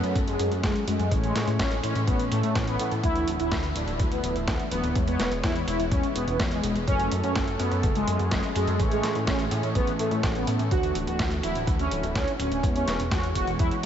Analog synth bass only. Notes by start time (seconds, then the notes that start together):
0.03 F#2
0.15 F#1
0.39 F#2
0.51 F#2
0.63 F#1
0.87 F#2
0.99 F#2
1.11 A1
1.36 A2
1.47 A2
1.59 A1
1.83 A2
1.95 A2
2.07 A1
2.32 A2
2.44 A2
2.55 A1
2.79 A2
2.92 A2
3.03 D2
3.28 D1
3.40 D1
3.51 D2
3.76 D1
3.88 D1
4.00 D2
4.23 D1
4.36 D1
4.48 D2
4.71 D1
4.83 D1
4.96 E2
5.20 E1
5.31 E1
5.44 E2
5.67 E1
5.79 E1
5.92 E2
6.15 E1
6.27 E1
6.40 E2
6.63 E1
6.76 E1
6.88 F#1
7.12 F#2
7.24 F#2
7.36 F#1
7.59 F#2
7.71 F#2
7.84 F#1
8.08 F#2
8.20 F#2
8.32 F#1
8.56 F#2
8.68 F#2
8.80 A1
9.04 A2
9.16 A2
9.27 A1
9.51 A2
9.63 A2
9.75 A1
9.99 A2
10.11 A2
10.23 A1
10.47 A2
10.59 A2
10.71 D2
10.95 D1
11.08 D1
11.19 D2
11.43 D1
11.56 D1
11.67 D2
11.91 D1
12.03 D1
12.15 D2
12.39 D1
12.51 D1
12.63 E2
12.87 E1
12.99 E1
13.11 E2
13.35 E1
13.47 E1
13.59 E2